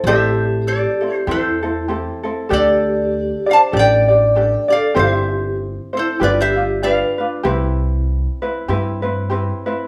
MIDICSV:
0, 0, Header, 1, 5, 480
1, 0, Start_track
1, 0, Key_signature, 0, "major"
1, 0, Tempo, 617920
1, 35, Time_signature, 4, 2, 24, 8
1, 7671, End_track
2, 0, Start_track
2, 0, Title_t, "Resonator guitar played with a steel bar"
2, 0, Program_c, 0, 25
2, 52, Note_on_c, 0, 72, 72
2, 57, Note_on_c, 0, 76, 94
2, 491, Note_off_c, 0, 72, 0
2, 524, Note_on_c, 0, 69, 52
2, 528, Note_on_c, 0, 74, 71
2, 537, Note_off_c, 0, 76, 0
2, 901, Note_off_c, 0, 74, 0
2, 901, Note_on_c, 0, 72, 71
2, 967, Note_off_c, 0, 69, 0
2, 1014, Note_off_c, 0, 72, 0
2, 1019, Note_on_c, 0, 69, 58
2, 1019, Note_on_c, 0, 72, 68
2, 1453, Note_off_c, 0, 72, 0
2, 1454, Note_off_c, 0, 69, 0
2, 1965, Note_on_c, 0, 69, 66
2, 1969, Note_on_c, 0, 74, 80
2, 2676, Note_off_c, 0, 69, 0
2, 2725, Note_on_c, 0, 77, 76
2, 2730, Note_off_c, 0, 74, 0
2, 2742, Note_on_c, 0, 81, 94
2, 2778, Note_off_c, 0, 77, 0
2, 2793, Note_off_c, 0, 81, 0
2, 2926, Note_on_c, 0, 74, 74
2, 2946, Note_on_c, 0, 79, 97
2, 3636, Note_off_c, 0, 74, 0
2, 3653, Note_on_c, 0, 74, 59
2, 3670, Note_on_c, 0, 77, 85
2, 3698, Note_off_c, 0, 79, 0
2, 3850, Note_off_c, 0, 74, 0
2, 3859, Note_off_c, 0, 77, 0
2, 3860, Note_on_c, 0, 72, 59
2, 3877, Note_on_c, 0, 76, 75
2, 4313, Note_off_c, 0, 72, 0
2, 4321, Note_off_c, 0, 76, 0
2, 4638, Note_on_c, 0, 69, 56
2, 4654, Note_on_c, 0, 72, 69
2, 4824, Note_off_c, 0, 69, 0
2, 4838, Note_on_c, 0, 71, 70
2, 4843, Note_off_c, 0, 72, 0
2, 4846, Note_on_c, 0, 74, 87
2, 4959, Note_off_c, 0, 71, 0
2, 4975, Note_on_c, 0, 72, 65
2, 4976, Note_off_c, 0, 74, 0
2, 4984, Note_on_c, 0, 76, 98
2, 5291, Note_off_c, 0, 72, 0
2, 5304, Note_off_c, 0, 76, 0
2, 5307, Note_on_c, 0, 74, 70
2, 5313, Note_on_c, 0, 77, 91
2, 5657, Note_off_c, 0, 74, 0
2, 5660, Note_off_c, 0, 77, 0
2, 7671, End_track
3, 0, Start_track
3, 0, Title_t, "Vibraphone"
3, 0, Program_c, 1, 11
3, 41, Note_on_c, 1, 67, 82
3, 485, Note_off_c, 1, 67, 0
3, 521, Note_on_c, 1, 67, 68
3, 965, Note_off_c, 1, 67, 0
3, 1003, Note_on_c, 1, 64, 60
3, 1445, Note_off_c, 1, 64, 0
3, 1962, Note_on_c, 1, 67, 80
3, 2674, Note_off_c, 1, 67, 0
3, 2718, Note_on_c, 1, 72, 77
3, 2808, Note_off_c, 1, 72, 0
3, 2926, Note_on_c, 1, 74, 80
3, 3636, Note_off_c, 1, 74, 0
3, 3684, Note_on_c, 1, 69, 67
3, 3867, Note_off_c, 1, 69, 0
3, 3873, Note_on_c, 1, 67, 67
3, 4319, Note_off_c, 1, 67, 0
3, 4651, Note_on_c, 1, 64, 64
3, 4831, Note_off_c, 1, 64, 0
3, 4841, Note_on_c, 1, 65, 69
3, 4961, Note_off_c, 1, 65, 0
3, 4980, Note_on_c, 1, 67, 73
3, 5314, Note_on_c, 1, 71, 74
3, 5316, Note_off_c, 1, 67, 0
3, 5660, Note_off_c, 1, 71, 0
3, 7671, End_track
4, 0, Start_track
4, 0, Title_t, "Ukulele"
4, 0, Program_c, 2, 24
4, 54, Note_on_c, 2, 67, 71
4, 59, Note_on_c, 2, 60, 70
4, 60, Note_on_c, 2, 64, 72
4, 63, Note_on_c, 2, 69, 81
4, 779, Note_off_c, 2, 67, 0
4, 782, Note_off_c, 2, 69, 0
4, 782, Note_on_c, 2, 69, 57
4, 783, Note_off_c, 2, 64, 0
4, 791, Note_off_c, 2, 60, 0
4, 792, Note_on_c, 2, 64, 46
4, 800, Note_on_c, 2, 60, 41
4, 984, Note_off_c, 2, 60, 0
4, 984, Note_off_c, 2, 69, 0
4, 987, Note_off_c, 2, 64, 0
4, 988, Note_on_c, 2, 67, 59
4, 994, Note_on_c, 2, 60, 59
4, 996, Note_on_c, 2, 64, 67
4, 1007, Note_on_c, 2, 69, 68
4, 1254, Note_off_c, 2, 69, 0
4, 1259, Note_off_c, 2, 67, 0
4, 1262, Note_off_c, 2, 60, 0
4, 1263, Note_on_c, 2, 69, 54
4, 1264, Note_off_c, 2, 64, 0
4, 1272, Note_on_c, 2, 64, 47
4, 1278, Note_on_c, 2, 60, 45
4, 1458, Note_off_c, 2, 60, 0
4, 1461, Note_off_c, 2, 64, 0
4, 1462, Note_on_c, 2, 67, 55
4, 1468, Note_on_c, 2, 60, 53
4, 1469, Note_off_c, 2, 69, 0
4, 1471, Note_on_c, 2, 64, 52
4, 1479, Note_on_c, 2, 69, 60
4, 1727, Note_off_c, 2, 69, 0
4, 1736, Note_off_c, 2, 64, 0
4, 1736, Note_off_c, 2, 67, 0
4, 1736, Note_on_c, 2, 69, 57
4, 1739, Note_off_c, 2, 60, 0
4, 1745, Note_on_c, 2, 64, 54
4, 1750, Note_on_c, 2, 60, 53
4, 1926, Note_off_c, 2, 69, 0
4, 1933, Note_off_c, 2, 64, 0
4, 1936, Note_on_c, 2, 69, 71
4, 1941, Note_off_c, 2, 60, 0
4, 1943, Note_on_c, 2, 67, 78
4, 1944, Note_on_c, 2, 62, 78
4, 1947, Note_on_c, 2, 74, 78
4, 2681, Note_off_c, 2, 74, 0
4, 2690, Note_on_c, 2, 74, 56
4, 2692, Note_off_c, 2, 69, 0
4, 2695, Note_off_c, 2, 67, 0
4, 2695, Note_on_c, 2, 67, 47
4, 2696, Note_off_c, 2, 62, 0
4, 2707, Note_on_c, 2, 62, 43
4, 2887, Note_off_c, 2, 67, 0
4, 2888, Note_off_c, 2, 62, 0
4, 2890, Note_on_c, 2, 69, 62
4, 2894, Note_off_c, 2, 74, 0
4, 2897, Note_on_c, 2, 62, 64
4, 2901, Note_on_c, 2, 67, 75
4, 2903, Note_on_c, 2, 74, 65
4, 3161, Note_off_c, 2, 74, 0
4, 3169, Note_off_c, 2, 69, 0
4, 3170, Note_off_c, 2, 67, 0
4, 3170, Note_on_c, 2, 74, 53
4, 3173, Note_off_c, 2, 62, 0
4, 3180, Note_on_c, 2, 67, 48
4, 3184, Note_on_c, 2, 62, 45
4, 3379, Note_off_c, 2, 62, 0
4, 3379, Note_off_c, 2, 67, 0
4, 3382, Note_on_c, 2, 69, 46
4, 3384, Note_off_c, 2, 74, 0
4, 3388, Note_on_c, 2, 62, 53
4, 3388, Note_on_c, 2, 67, 55
4, 3396, Note_on_c, 2, 74, 54
4, 3628, Note_off_c, 2, 74, 0
4, 3636, Note_off_c, 2, 67, 0
4, 3638, Note_on_c, 2, 74, 53
4, 3643, Note_off_c, 2, 69, 0
4, 3644, Note_off_c, 2, 62, 0
4, 3646, Note_on_c, 2, 67, 45
4, 3654, Note_on_c, 2, 62, 42
4, 3832, Note_off_c, 2, 67, 0
4, 3842, Note_on_c, 2, 67, 66
4, 3844, Note_off_c, 2, 62, 0
4, 3847, Note_on_c, 2, 60, 81
4, 3850, Note_off_c, 2, 74, 0
4, 3850, Note_on_c, 2, 64, 79
4, 3853, Note_on_c, 2, 72, 75
4, 4598, Note_off_c, 2, 72, 0
4, 4604, Note_off_c, 2, 64, 0
4, 4607, Note_on_c, 2, 72, 55
4, 4608, Note_off_c, 2, 60, 0
4, 4613, Note_on_c, 2, 64, 42
4, 4622, Note_on_c, 2, 60, 42
4, 4811, Note_off_c, 2, 67, 0
4, 4814, Note_on_c, 2, 67, 62
4, 4819, Note_off_c, 2, 60, 0
4, 4822, Note_off_c, 2, 64, 0
4, 4822, Note_off_c, 2, 72, 0
4, 4822, Note_on_c, 2, 62, 64
4, 4825, Note_on_c, 2, 65, 67
4, 4829, Note_on_c, 2, 71, 71
4, 5087, Note_off_c, 2, 65, 0
4, 5091, Note_off_c, 2, 67, 0
4, 5095, Note_off_c, 2, 62, 0
4, 5096, Note_on_c, 2, 65, 50
4, 5099, Note_off_c, 2, 71, 0
4, 5106, Note_on_c, 2, 62, 44
4, 5301, Note_off_c, 2, 62, 0
4, 5303, Note_off_c, 2, 65, 0
4, 5303, Note_on_c, 2, 67, 48
4, 5310, Note_on_c, 2, 62, 53
4, 5312, Note_on_c, 2, 65, 46
4, 5318, Note_on_c, 2, 71, 56
4, 5569, Note_off_c, 2, 71, 0
4, 5576, Note_off_c, 2, 67, 0
4, 5578, Note_on_c, 2, 71, 48
4, 5579, Note_off_c, 2, 62, 0
4, 5581, Note_off_c, 2, 65, 0
4, 5592, Note_on_c, 2, 65, 45
4, 5596, Note_on_c, 2, 62, 39
4, 5775, Note_on_c, 2, 67, 77
4, 5776, Note_off_c, 2, 71, 0
4, 5778, Note_off_c, 2, 62, 0
4, 5781, Note_off_c, 2, 65, 0
4, 5782, Note_on_c, 2, 60, 75
4, 5784, Note_on_c, 2, 64, 82
4, 5785, Note_on_c, 2, 71, 83
4, 6531, Note_off_c, 2, 71, 0
4, 6533, Note_off_c, 2, 67, 0
4, 6540, Note_on_c, 2, 71, 57
4, 6544, Note_off_c, 2, 64, 0
4, 6547, Note_on_c, 2, 64, 48
4, 6552, Note_off_c, 2, 60, 0
4, 6555, Note_on_c, 2, 60, 44
4, 6738, Note_off_c, 2, 60, 0
4, 6745, Note_on_c, 2, 67, 69
4, 6747, Note_off_c, 2, 64, 0
4, 6747, Note_on_c, 2, 60, 68
4, 6751, Note_off_c, 2, 71, 0
4, 6756, Note_on_c, 2, 64, 76
4, 6759, Note_on_c, 2, 71, 71
4, 6999, Note_off_c, 2, 71, 0
4, 7005, Note_off_c, 2, 64, 0
4, 7008, Note_on_c, 2, 71, 58
4, 7013, Note_off_c, 2, 60, 0
4, 7015, Note_on_c, 2, 64, 48
4, 7019, Note_off_c, 2, 67, 0
4, 7023, Note_on_c, 2, 60, 45
4, 7219, Note_off_c, 2, 64, 0
4, 7221, Note_off_c, 2, 60, 0
4, 7221, Note_on_c, 2, 67, 55
4, 7226, Note_off_c, 2, 71, 0
4, 7229, Note_on_c, 2, 64, 58
4, 7230, Note_on_c, 2, 60, 56
4, 7235, Note_on_c, 2, 71, 64
4, 7495, Note_off_c, 2, 71, 0
4, 7498, Note_off_c, 2, 67, 0
4, 7502, Note_off_c, 2, 60, 0
4, 7502, Note_off_c, 2, 64, 0
4, 7504, Note_on_c, 2, 71, 58
4, 7510, Note_on_c, 2, 64, 56
4, 7518, Note_on_c, 2, 60, 47
4, 7671, Note_off_c, 2, 60, 0
4, 7671, Note_off_c, 2, 64, 0
4, 7671, Note_off_c, 2, 71, 0
4, 7671, End_track
5, 0, Start_track
5, 0, Title_t, "Upright bass"
5, 0, Program_c, 3, 32
5, 28, Note_on_c, 3, 33, 96
5, 653, Note_off_c, 3, 33, 0
5, 987, Note_on_c, 3, 40, 88
5, 1611, Note_off_c, 3, 40, 0
5, 1950, Note_on_c, 3, 38, 98
5, 2573, Note_off_c, 3, 38, 0
5, 2900, Note_on_c, 3, 33, 95
5, 3526, Note_off_c, 3, 33, 0
5, 3856, Note_on_c, 3, 31, 101
5, 4484, Note_off_c, 3, 31, 0
5, 4825, Note_on_c, 3, 31, 82
5, 5450, Note_off_c, 3, 31, 0
5, 5785, Note_on_c, 3, 36, 92
5, 6412, Note_off_c, 3, 36, 0
5, 6747, Note_on_c, 3, 43, 84
5, 7375, Note_off_c, 3, 43, 0
5, 7671, End_track
0, 0, End_of_file